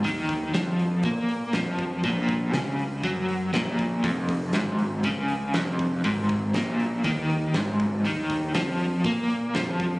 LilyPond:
<<
  \new Staff \with { instrumentName = "Overdriven electric guitar" } { \clef bass \time 4/4 \key ees \mixolydian \tempo 4 = 120 ees4 f4 bes4 f4 | bes,4 des4 ges4 bes,4 | f,4 aes,4 des4 f,4 | aes,4 bes,4 ees4 aes,4 |
ees4 f4 bes4 f4 | }
  \new Staff \with { instrumentName = "Picked electric bass" } { \clef bass \time 4/4 \key ees \mixolydian ees,4 f,4 bes,4 f,4 | bes,,4 des,4 ges,4 bes,,4 | f,,4 aes,,4 des,4 f,,4 | aes,,4 bes,,4 ees,4 aes,,4 |
ees,4 f,4 bes,4 f,4 | }
  \new DrumStaff \with { instrumentName = "Drums" } \drummode { \time 4/4 hho8 <hho bd>8 <hho sn>8 hho8 <hho bd>8 hho8 <hho sn>8 <hho bd>8 | <hho bd>8 <hho bd>8 <hho sn>8 hho8 <hho bd>8 hho8 <hho sn>8 <hho bd>8 | <hho bd>8 <hho bd>8 <hho sn>8 hho8 <hho bd>8 hho8 <hho sn>8 <hho bd>8 | <hho bd>8 <hho bd>8 <hho sn>8 hho8 <hho bd>8 hho8 <hho sn>8 <hho bd>8 |
hho8 <hho bd>8 <hho sn>8 hho8 <hho bd>8 hho8 <hho sn>8 <hho bd>8 | }
>>